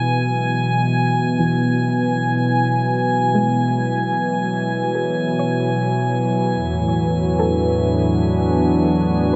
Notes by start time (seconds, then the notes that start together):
Already playing: B2 E3 G#3 E4 G#5
0.14 F#3
1.39 E3
3.35 G#3
4.95 G#4
5.39 C#5
6.51 E2 E3 B3
6.65 A2
7.04 F#4
7.38 D4 A4